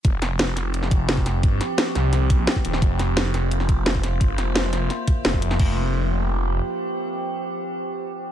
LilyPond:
<<
  \new Staff \with { instrumentName = "Synth drone" } { \time 4/4 \key bes \mixolydian \tempo 4 = 173 <f c' g'>1~ | <f c' g'>1 | <bes f' c''>1~ | <bes f' c''>1 |
<f c' g'>1~ | <f c' g'>1 | }
  \new Staff \with { instrumentName = "Detuned saw bass" } { \clef bass \time 4/4 \key bes \mixolydian f,,2~ f,,8 f,,4. | g,,8 r4 c,4. r8 ees,,8 | f,,2~ f,,8 f,,4. | g,,8 f,,4. r4 f,,4 |
f,,2. r4 | r1 | }
  \new DrumStaff \with { instrumentName = "Drums" } \drummode { \time 4/4 <hh bd>8 <hh sn>8 <hh sn>8 <hh sn>8 hh16 sn16 <hh bd>8 <hh sn>16 bd16 <hh sn>8 | <hh bd>8 <hh sn>8 <hh sn>8 <hh sn>8 <hh sn>8 <hh bd>8 <hh sn>16 bd16 hh16 sn16 | <hh bd>8 <hh sn>8 <hh sn>8 <hh sn>8 hh16 sn16 <hh bd>8 <hh sn>16 bd16 <hh sn>8 | <hh bd>8 <hh sn>8 <hh sn>8 <hh sn>8 <hh sn>8 <hh bd>8 <hh sn>16 bd16 hh16 sn16 |
<cymc bd>4 r4 r4 r4 | r4 r4 r4 r4 | }
>>